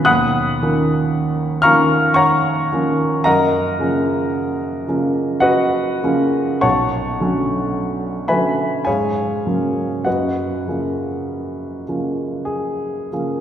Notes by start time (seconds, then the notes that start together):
0.05 D#2 F#5 B5 D#6 F#6
0.62 D#3 F3 A#3 C#4
1.62 D#3 F3 A#3 C#4 F5 A#5 C#6 F6
2.14 C#5 F#5 A#5 C#6
2.72 D#3 F3 A#3 C#4
3.24 F#2 A#4 D#5 F#5 A#5
3.79 C#3 F3 A#3 C#4
4.87 C#3 F3 A#3 C#4
5.40 F#4 B4 D#5 F#5
6.03 C#3 F3 A#3 C#4
6.61 B1 C#5 F#5 A5 C#6
7.20 D3 F#3 A3 C#4
8.28 D3 F#3 A3 C#4 B4 E5 G#5 B5
8.85 G#2 G#4 C#5 F5 G#5
9.47 C#3 F#3 A#3 C#4
10.05 F#2 F#4 B4 D#5 F#5
10.67 C#3 F3 A#3 C#4
11.88 C#3 F3 A#3 C#4
12.45 G#4
13.12 C#3 F3 A#3 C#4